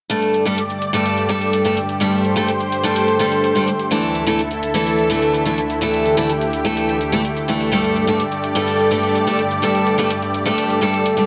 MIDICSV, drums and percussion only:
0, 0, Header, 1, 2, 480
1, 0, Start_track
1, 0, Tempo, 476190
1, 106, Time_signature, 4, 2, 24, 8
1, 11353, End_track
2, 0, Start_track
2, 0, Title_t, "Drums"
2, 106, Note_on_c, 9, 42, 87
2, 206, Note_off_c, 9, 42, 0
2, 226, Note_on_c, 9, 42, 37
2, 326, Note_off_c, 9, 42, 0
2, 346, Note_on_c, 9, 42, 33
2, 446, Note_off_c, 9, 42, 0
2, 466, Note_on_c, 9, 42, 37
2, 566, Note_off_c, 9, 42, 0
2, 585, Note_on_c, 9, 42, 86
2, 686, Note_off_c, 9, 42, 0
2, 706, Note_on_c, 9, 42, 37
2, 807, Note_off_c, 9, 42, 0
2, 826, Note_on_c, 9, 42, 61
2, 927, Note_off_c, 9, 42, 0
2, 945, Note_on_c, 9, 42, 37
2, 1046, Note_off_c, 9, 42, 0
2, 1066, Note_on_c, 9, 42, 87
2, 1166, Note_off_c, 9, 42, 0
2, 1186, Note_on_c, 9, 42, 37
2, 1286, Note_off_c, 9, 42, 0
2, 1305, Note_on_c, 9, 42, 59
2, 1406, Note_off_c, 9, 42, 0
2, 1425, Note_on_c, 9, 42, 38
2, 1526, Note_off_c, 9, 42, 0
2, 1546, Note_on_c, 9, 42, 89
2, 1646, Note_off_c, 9, 42, 0
2, 1665, Note_on_c, 9, 42, 36
2, 1766, Note_off_c, 9, 42, 0
2, 1786, Note_on_c, 9, 42, 61
2, 1886, Note_off_c, 9, 42, 0
2, 1906, Note_on_c, 9, 42, 38
2, 2006, Note_off_c, 9, 42, 0
2, 2025, Note_on_c, 9, 42, 86
2, 2126, Note_off_c, 9, 42, 0
2, 2145, Note_on_c, 9, 42, 36
2, 2246, Note_off_c, 9, 42, 0
2, 2265, Note_on_c, 9, 42, 34
2, 2366, Note_off_c, 9, 42, 0
2, 2385, Note_on_c, 9, 42, 36
2, 2486, Note_off_c, 9, 42, 0
2, 2505, Note_on_c, 9, 42, 83
2, 2606, Note_off_c, 9, 42, 0
2, 2625, Note_on_c, 9, 42, 34
2, 2726, Note_off_c, 9, 42, 0
2, 2745, Note_on_c, 9, 42, 58
2, 2846, Note_off_c, 9, 42, 0
2, 2865, Note_on_c, 9, 42, 36
2, 2966, Note_off_c, 9, 42, 0
2, 2985, Note_on_c, 9, 42, 86
2, 3086, Note_off_c, 9, 42, 0
2, 3106, Note_on_c, 9, 42, 36
2, 3207, Note_off_c, 9, 42, 0
2, 3226, Note_on_c, 9, 42, 55
2, 3327, Note_off_c, 9, 42, 0
2, 3346, Note_on_c, 9, 42, 36
2, 3447, Note_off_c, 9, 42, 0
2, 3466, Note_on_c, 9, 42, 84
2, 3567, Note_off_c, 9, 42, 0
2, 3586, Note_on_c, 9, 42, 36
2, 3686, Note_off_c, 9, 42, 0
2, 3705, Note_on_c, 9, 42, 57
2, 3806, Note_off_c, 9, 42, 0
2, 3825, Note_on_c, 9, 42, 36
2, 3926, Note_off_c, 9, 42, 0
2, 3945, Note_on_c, 9, 42, 80
2, 4046, Note_off_c, 9, 42, 0
2, 4065, Note_on_c, 9, 42, 35
2, 4166, Note_off_c, 9, 42, 0
2, 4185, Note_on_c, 9, 42, 33
2, 4286, Note_off_c, 9, 42, 0
2, 4305, Note_on_c, 9, 42, 34
2, 4406, Note_off_c, 9, 42, 0
2, 4425, Note_on_c, 9, 42, 83
2, 4526, Note_off_c, 9, 42, 0
2, 4545, Note_on_c, 9, 42, 36
2, 4646, Note_off_c, 9, 42, 0
2, 4665, Note_on_c, 9, 42, 59
2, 4766, Note_off_c, 9, 42, 0
2, 4785, Note_on_c, 9, 42, 34
2, 4886, Note_off_c, 9, 42, 0
2, 4905, Note_on_c, 9, 42, 83
2, 5006, Note_off_c, 9, 42, 0
2, 5025, Note_on_c, 9, 42, 35
2, 5126, Note_off_c, 9, 42, 0
2, 5145, Note_on_c, 9, 42, 54
2, 5246, Note_off_c, 9, 42, 0
2, 5265, Note_on_c, 9, 42, 35
2, 5366, Note_off_c, 9, 42, 0
2, 5385, Note_on_c, 9, 42, 81
2, 5486, Note_off_c, 9, 42, 0
2, 5505, Note_on_c, 9, 42, 33
2, 5606, Note_off_c, 9, 42, 0
2, 5625, Note_on_c, 9, 42, 57
2, 5726, Note_off_c, 9, 42, 0
2, 5745, Note_on_c, 9, 42, 35
2, 5846, Note_off_c, 9, 42, 0
2, 5865, Note_on_c, 9, 42, 82
2, 5966, Note_off_c, 9, 42, 0
2, 5985, Note_on_c, 9, 42, 35
2, 6086, Note_off_c, 9, 42, 0
2, 6105, Note_on_c, 9, 42, 31
2, 6206, Note_off_c, 9, 42, 0
2, 6226, Note_on_c, 9, 42, 34
2, 6326, Note_off_c, 9, 42, 0
2, 6345, Note_on_c, 9, 42, 78
2, 6446, Note_off_c, 9, 42, 0
2, 6466, Note_on_c, 9, 42, 35
2, 6567, Note_off_c, 9, 42, 0
2, 6585, Note_on_c, 9, 42, 57
2, 6686, Note_off_c, 9, 42, 0
2, 6705, Note_on_c, 9, 42, 33
2, 6806, Note_off_c, 9, 42, 0
2, 6825, Note_on_c, 9, 42, 80
2, 6926, Note_off_c, 9, 42, 0
2, 6945, Note_on_c, 9, 42, 35
2, 7046, Note_off_c, 9, 42, 0
2, 7065, Note_on_c, 9, 42, 54
2, 7166, Note_off_c, 9, 42, 0
2, 7185, Note_on_c, 9, 42, 35
2, 7286, Note_off_c, 9, 42, 0
2, 7306, Note_on_c, 9, 42, 82
2, 7406, Note_off_c, 9, 42, 0
2, 7426, Note_on_c, 9, 42, 34
2, 7526, Note_off_c, 9, 42, 0
2, 7546, Note_on_c, 9, 42, 54
2, 7646, Note_off_c, 9, 42, 0
2, 7666, Note_on_c, 9, 42, 34
2, 7767, Note_off_c, 9, 42, 0
2, 7786, Note_on_c, 9, 42, 81
2, 7886, Note_off_c, 9, 42, 0
2, 7906, Note_on_c, 9, 42, 33
2, 8007, Note_off_c, 9, 42, 0
2, 8026, Note_on_c, 9, 42, 31
2, 8127, Note_off_c, 9, 42, 0
2, 8146, Note_on_c, 9, 42, 35
2, 8246, Note_off_c, 9, 42, 0
2, 8266, Note_on_c, 9, 42, 79
2, 8366, Note_off_c, 9, 42, 0
2, 8386, Note_on_c, 9, 42, 34
2, 8486, Note_off_c, 9, 42, 0
2, 8506, Note_on_c, 9, 42, 58
2, 8606, Note_off_c, 9, 42, 0
2, 8626, Note_on_c, 9, 42, 34
2, 8727, Note_off_c, 9, 42, 0
2, 8746, Note_on_c, 9, 42, 84
2, 8847, Note_off_c, 9, 42, 0
2, 8866, Note_on_c, 9, 42, 34
2, 8967, Note_off_c, 9, 42, 0
2, 8986, Note_on_c, 9, 42, 55
2, 9087, Note_off_c, 9, 42, 0
2, 9106, Note_on_c, 9, 42, 35
2, 9207, Note_off_c, 9, 42, 0
2, 9226, Note_on_c, 9, 42, 84
2, 9327, Note_off_c, 9, 42, 0
2, 9347, Note_on_c, 9, 42, 34
2, 9447, Note_off_c, 9, 42, 0
2, 9466, Note_on_c, 9, 42, 58
2, 9567, Note_off_c, 9, 42, 0
2, 9586, Note_on_c, 9, 42, 33
2, 9687, Note_off_c, 9, 42, 0
2, 9706, Note_on_c, 9, 42, 84
2, 9807, Note_off_c, 9, 42, 0
2, 9827, Note_on_c, 9, 42, 36
2, 9927, Note_off_c, 9, 42, 0
2, 9947, Note_on_c, 9, 42, 32
2, 10048, Note_off_c, 9, 42, 0
2, 10067, Note_on_c, 9, 42, 35
2, 10168, Note_off_c, 9, 42, 0
2, 10187, Note_on_c, 9, 42, 83
2, 10287, Note_off_c, 9, 42, 0
2, 10307, Note_on_c, 9, 42, 35
2, 10408, Note_off_c, 9, 42, 0
2, 10427, Note_on_c, 9, 42, 58
2, 10527, Note_off_c, 9, 42, 0
2, 10546, Note_on_c, 9, 42, 35
2, 10647, Note_off_c, 9, 42, 0
2, 10666, Note_on_c, 9, 42, 85
2, 10767, Note_off_c, 9, 42, 0
2, 10787, Note_on_c, 9, 42, 36
2, 10887, Note_off_c, 9, 42, 0
2, 10906, Note_on_c, 9, 42, 57
2, 11007, Note_off_c, 9, 42, 0
2, 11027, Note_on_c, 9, 42, 37
2, 11127, Note_off_c, 9, 42, 0
2, 11147, Note_on_c, 9, 42, 84
2, 11247, Note_off_c, 9, 42, 0
2, 11267, Note_on_c, 9, 42, 35
2, 11353, Note_off_c, 9, 42, 0
2, 11353, End_track
0, 0, End_of_file